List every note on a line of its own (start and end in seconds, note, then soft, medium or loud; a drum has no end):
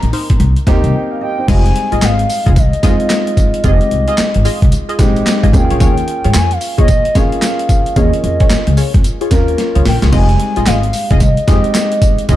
0.00 0.11 A#1 medium
0.00 0.67 A#3 medium
0.00 0.67 C4 medium
0.00 0.68 D#4 medium
0.00 0.68 G4 medium
0.00 0.11 A#5 loud
0.00 closed hi-hat medium
0.13 0.28 D#4 medium
0.13 0.28 A#4 medium
0.13 0.28 C5 medium
0.13 open hi-hat medium
0.30 0.38 G1 medium
0.30 kick medium
0.30 closed hi-hat medium
0.40 0.53 C2 loud
0.40 closed hi-hat medium
0.56 closed hi-hat soft
0.67 0.81 D#2 medium
0.67 1.17 A#3 medium
0.67 1.17 C4 medium
0.67 0.82 D#4 medium
0.67 0.94 D#4 medium
0.67 0.94 G4 loud
0.67 0.82 A#4 medium
0.67 0.83 C5 medium
0.67 0.92 A#5 medium
0.67 kick medium
0.67 snare medium
0.67 closed hi-hat medium
0.84 0.92 C2 medium
0.84 closed hi-hat soft
0.95 1.11 G4 medium
0.95 1.10 D#5 medium
0.95 1.20 G5 medium
1.11 1.21 F5 medium
1.21 1.38 G4 medium
1.21 1.37 D#5 medium
1.21 1.47 G5 loud
1.38 1.46 D#4 medium
1.38 1.64 C5 medium
1.47 1.70 F1 loud
1.47 2.16 G3 medium
1.47 2.15 G#3 medium
1.47 2.16 C4 medium
1.47 2.16 D#4 medium
1.47 1.63 F4 loud
1.47 1.64 G#4 medium
1.47 1.64 D#5 loud
1.47 2.06 G#5 loud
1.47 kick loud
1.47 closed hi-hat medium
1.47 crash loud
1.47 tambourine medium
1.66 closed hi-hat medium
1.76 closed hi-hat medium
1.92 2.00 A#1 medium
1.92 2.01 F4 medium
1.92 2.01 G#4 medium
1.92 2.01 D#5 medium
1.92 closed hi-hat medium
2.02 2.24 G#1 medium
2.02 2.17 F4 medium
2.02 2.17 G#4 medium
2.02 2.18 D#5 medium
2.02 2.60 F5 loud
2.02 snare loud
2.02 clap medium
2.02 closed hi-hat medium
2.02 tambourine medium
2.19 closed hi-hat medium
2.30 open hi-hat medium
2.30 tambourine medium
2.46 2.55 F1 loud
2.46 2.55 F4 medium
2.46 2.55 G#4 medium
2.46 2.56 D#5 medium
2.46 kick medium
2.46 closed hi-hat medium
2.56 2.70 C2 medium
2.56 3.66 D#5 loud
2.56 kick medium
2.56 closed hi-hat medium
2.56 tambourine medium
2.73 closed hi-hat soft
2.83 2.97 F2 loud
2.83 3.33 G#3 medium
2.83 3.33 C4 medium
2.83 3.33 D#4 medium
2.83 2.98 F4 medium
2.83 3.34 F4 medium
2.83 2.98 G#4 medium
2.83 2.99 D#5 medium
2.83 kick medium
2.83 snare medium
2.83 closed hi-hat medium
2.83 tambourine medium
3.00 closed hi-hat soft
3.10 snare loud
3.10 clap medium
3.10 closed hi-hat medium
3.10 tambourine loud
3.27 closed hi-hat medium
3.37 kick medium
3.37 closed hi-hat medium
3.37 tambourine medium
3.54 closed hi-hat medium
3.64 3.78 F1 loud
3.64 4.32 G#3 medium
3.64 4.32 C4 medium
3.64 4.33 D#4 medium
3.64 3.79 F4 loud
3.64 4.33 G4 medium
3.64 3.80 G#4 medium
3.64 3.80 D#5 medium
3.64 4.70 D#5 loud
3.64 kick loud
3.64 closed hi-hat medium
3.64 tambourine medium
3.81 closed hi-hat soft
3.91 4.05 C2 medium
3.91 closed hi-hat medium
4.08 4.17 F4 medium
4.08 4.17 G#4 medium
4.08 4.18 D#5 medium
4.08 closed hi-hat medium
4.18 muted upright bass stroke soft
4.18 snare loud
4.18 clap medium
4.18 closed hi-hat medium
4.18 tambourine medium
4.34 4.44 G#1 loud
4.34 closed hi-hat medium
4.45 4.60 F4 medium
4.45 4.61 G#4 medium
4.45 4.61 D#5 medium
4.45 open hi-hat medium
4.45 tambourine medium
4.62 4.70 C2 medium
4.62 kick medium
4.62 closed hi-hat medium
4.72 closed hi-hat medium
4.72 tambourine medium
4.89 4.98 F4 medium
4.89 4.98 G#4 medium
4.89 4.99 D#5 medium
4.89 closed hi-hat soft
4.99 5.21 A#1 medium
4.99 5.49 G#3 medium
4.99 5.49 C4 medium
4.99 5.50 D#4 medium
4.99 5.50 G4 medium
4.99 kick medium
4.99 snare medium
4.99 closed hi-hat medium
4.99 tambourine medium
5.16 closed hi-hat soft
5.27 snare loud
5.27 clap medium
5.27 closed hi-hat medium
5.27 tambourine loud
5.43 5.52 G#1 medium
5.43 5.52 F4 medium
5.43 5.53 G#4 medium
5.43 5.53 D#5 medium
5.43 kick medium
5.43 closed hi-hat medium
5.53 5.67 D#2 loud
5.53 6.41 A#3 medium
5.53 6.41 C#4 medium
5.53 6.42 F4 medium
5.53 6.42 G#4 medium
5.53 6.38 G5 loud
5.53 kick medium
5.53 closed hi-hat medium
5.53 tambourine medium
5.70 5.79 A#1 medium
5.70 5.79 F4 medium
5.70 5.79 G#4 medium
5.70 5.80 C#5 medium
5.70 closed hi-hat medium
5.80 6.02 D#2 loud
5.80 5.96 F4 medium
5.80 5.96 G#4 medium
5.80 5.96 C#5 loud
5.80 kick loud
5.80 closed hi-hat medium
5.80 tambourine medium
5.98 closed hi-hat soft
6.08 closed hi-hat medium
6.24 6.33 G#2 medium
6.24 6.33 F4 medium
6.24 6.33 G#4 medium
6.24 6.34 C#5 medium
6.24 closed hi-hat medium
6.34 6.57 F2 medium
6.34 6.50 F4 medium
6.34 6.50 G#4 medium
6.34 6.50 C#5 medium
6.34 6.54 G#5 loud
6.34 snare loud
6.34 clap loud
6.34 closed hi-hat medium
6.34 tambourine medium
6.51 6.79 F5 loud
6.51 closed hi-hat medium
6.61 open hi-hat medium
6.61 tambourine medium
6.78 6.87 D#2 medium
6.78 6.87 F4 medium
6.78 6.88 G#4 medium
6.78 6.88 C#5 medium
6.78 7.18 D#5 loud
6.78 kick medium
6.78 closed hi-hat medium
6.88 7.02 A#2 medium
6.88 kick medium
6.88 closed hi-hat medium
6.88 tambourine medium
7.05 closed hi-hat soft
7.15 7.29 D#3 medium
7.15 7.66 A#3 medium
7.15 7.66 C#4 medium
7.15 7.31 F4 medium
7.15 7.66 F4 medium
7.15 7.31 G#4 medium
7.15 7.66 G#4 medium
7.15 7.31 C#5 medium
7.15 7.97 F5 loud
7.15 kick medium
7.15 snare medium
7.15 closed hi-hat medium
7.15 tambourine medium
7.32 closed hi-hat soft
7.42 snare loud
7.42 clap medium
7.42 closed hi-hat medium
7.42 tambourine loud
7.59 closed hi-hat medium
7.69 kick medium
7.69 closed hi-hat medium
7.69 tambourine medium
7.86 closed hi-hat medium
7.96 8.10 D#2 loud
7.96 8.64 A#3 medium
7.96 8.64 C#4 medium
7.96 8.12 F4 medium
7.96 8.65 F4 medium
7.96 8.12 G#4 medium
7.96 8.65 G#4 medium
7.96 8.12 C#5 loud
7.96 8.22 D#5 loud
7.96 kick loud
7.96 closed hi-hat medium
7.96 tambourine medium
8.13 closed hi-hat medium
8.24 8.37 F2 medium
8.24 8.74 D#5 medium
8.24 closed hi-hat medium
8.40 8.50 F4 medium
8.40 8.50 G#4 medium
8.40 8.50 C#5 medium
8.40 kick loud
8.40 closed hi-hat medium
8.50 muted upright bass stroke soft
8.50 snare loud
8.50 clap medium
8.50 closed hi-hat medium
8.50 tambourine medium
8.67 8.76 C#2 medium
8.67 closed hi-hat medium
8.77 8.93 F4 medium
8.77 8.93 G#4 medium
8.77 8.93 C#5 medium
8.77 open hi-hat medium
8.77 tambourine medium
8.94 9.03 F2 loud
8.94 kick medium
8.94 closed hi-hat medium
9.04 closed hi-hat medium
9.04 tambourine medium
9.21 9.31 F4 medium
9.21 9.31 G#4 medium
9.21 9.31 C#5 medium
9.21 closed hi-hat medium
9.31 9.53 D#2 medium
9.31 9.82 A#3 medium
9.31 9.82 C#4 medium
9.31 9.82 F4 medium
9.31 9.82 A#4 medium
9.31 kick medium
9.31 snare medium
9.31 closed hi-hat medium
9.31 tambourine medium
9.48 closed hi-hat soft
9.58 snare medium
9.58 closed hi-hat medium
9.75 9.84 C#2 medium
9.75 9.85 F4 medium
9.75 9.85 G#4 medium
9.75 9.85 C#5 medium
9.75 closed hi-hat medium
9.86 10.00 A#1 medium
9.86 10.00 G5 loud
9.86 snare loud
9.86 open hi-hat medium
10.02 10.11 C2 medium
10.02 10.11 F4 medium
10.02 10.11 G#4 medium
10.02 10.12 C#5 medium
10.02 snare medium
10.02 closed hi-hat medium
10.12 10.35 F1 loud
10.12 10.81 G3 medium
10.12 10.81 G#3 medium
10.12 10.81 C4 medium
10.12 10.81 D#4 medium
10.12 10.28 F4 loud
10.12 10.28 G#4 medium
10.12 10.28 D#5 loud
10.12 10.68 G#5 loud
10.12 kick loud
10.12 crash medium
10.12 tambourine medium
10.29 closed hi-hat soft
10.40 closed hi-hat medium
10.56 10.65 A#1 medium
10.56 10.65 F4 medium
10.56 10.66 G#4 medium
10.56 10.66 D#5 medium
10.56 closed hi-hat medium
10.66 10.89 G#1 loud
10.66 10.82 F4 medium
10.66 10.82 G#4 medium
10.66 10.82 D#5 medium
10.66 11.20 F5 loud
10.66 snare loud
10.66 clap medium
10.66 closed hi-hat medium
10.66 tambourine medium
10.83 closed hi-hat medium
10.93 open hi-hat medium
10.93 tambourine medium
11.11 11.19 F1 medium
11.11 11.20 F4 medium
11.11 11.20 G#4 medium
11.11 11.20 D#5 medium
11.11 kick medium
11.11 closed hi-hat medium
11.20 11.34 C2 loud
11.20 12.25 D#5 loud
11.20 kick medium
11.20 closed hi-hat medium
11.20 tambourine medium
11.37 closed hi-hat soft
11.47 11.62 F2 medium
11.47 11.98 G#3 medium
11.47 11.98 C4 medium
11.47 11.98 D#4 medium
11.47 11.63 F4 medium
11.47 11.98 G4 medium
11.47 11.63 G#4 medium
11.47 11.63 D#5 medium
11.47 kick medium
11.47 snare medium
11.47 closed hi-hat medium
11.47 tambourine medium
11.64 closed hi-hat soft
11.74 snare loud
11.74 clap medium
11.74 closed hi-hat medium
11.74 tambourine loud
11.92 closed hi-hat medium
12.02 kick medium
12.02 closed hi-hat medium
12.02 tambourine medium
12.18 closed hi-hat medium
12.29 12.36 F1 loud
12.29 12.36 G#3 medium
12.29 12.36 C4 medium
12.29 12.36 D#4 medium
12.29 12.36 F4 loud
12.29 12.36 G4 medium
12.29 12.36 G#4 medium
12.29 12.36 D#5 loud
12.29 kick loud
12.29 closed hi-hat medium
12.29 tambourine medium